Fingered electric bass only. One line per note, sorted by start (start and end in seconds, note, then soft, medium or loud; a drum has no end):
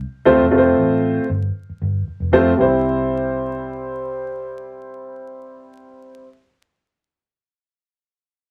0.26 0.36 D2 medium
0.39 0.49 E1 medium
0.52 0.72 F1 loud
0.78 1.17 A1 medium
1.29 1.49 G1 medium
1.70 muted fingered electric bass stroke soft
1.82 2.01 G1 medium
2.08 muted fingered electric bass stroke soft
2.20 2.30 F1 medium
2.32 2.52 F2 loud
2.59 6.23 C2 loud